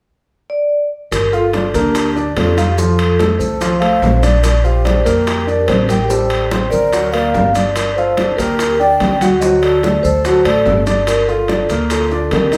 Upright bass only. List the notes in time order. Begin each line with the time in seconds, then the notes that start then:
1.12 G1
1.74 D2
2.37 F2
3.40 C2
4.02 A#1
5.06 F2
5.69 A1
6.72 D2
7.35 G1
8.39 D2
9.01 D2
10.04 D2
10.45 A1
10.66 G1
11.70 D2
12.32 C2